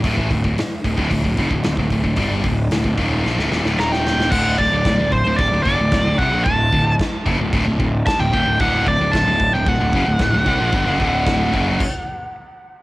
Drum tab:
CC |----------------|----------------|x---x---x---x---|x---x---x---x---|
HH |o-o-o-o-o-o-o-o-|o-o-o-o---------|----------------|----------------|
SD |----o-------o---|----o---oooooooo|----o-------o---|----o-------o---|
BD |oooo--oooooo-ooo|o-o--oo---------|o-o-o-o-o-o-o-o-|o-o-o-o-o-o-o-o-|

CC |x---x---x---x---|x---x---x-------|
HH |----------------|----------------|
SD |----o-------o---|----o-----------|
BD |o-o-o-o-o-o-o-o-|o-o-o-o-o-------|